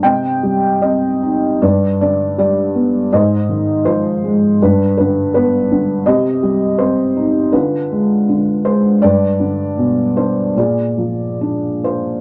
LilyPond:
<<
  \new Staff \with { instrumentName = "Felt piano" } { \time 4/4 \key c \minor \tempo 4 = 80 << { g''4 ees''4 d''8 d''8 d''4 | ees''4 c''4 b'8 b'8 b'4 | ees''4 c''4 b'4 r8 c''8 | d''4. c''8 d''4. c''8 | } \\ { ees''2 b'2 | c''2 d'2 | g'2 f'2 | b'2 aes'2 | } >> }
  \new Staff \with { instrumentName = "Felt piano" } { \clef bass \time 4/4 \key c \minor c8 g8 c'8 ees'8 g,8 d8 g8 b8 | aes,8 ees8 f8 aes8 g,8 d8 b8 d8 | c8 g8 c'8 ees'8 d8 aes8 d8 aes8 | g,8 d8 b,8 d'8 bes,8 f8 d'8 f'8 | }
>>